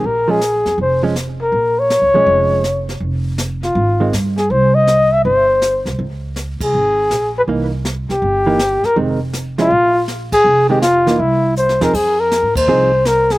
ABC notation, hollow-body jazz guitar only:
X:1
M:4/4
L:1/8
Q:"Swing" 1/4=161
K:Fm
V:1 name="Hollow-body jazz guitar"
z [F,A,D] z3 [F,A,D] z2 | z3 [F,A,D]3 z2 | z4 z [E,A,C] z2 | z8 |
z8 | [=E,B,^D] z4 [E,B,D] z2 | [E,A,C] z2 [F,A,D] z4 | z [E,A,C] z [=E,B,_E] z3 [F,CEA] |
z4 [F,CEA] z3 |]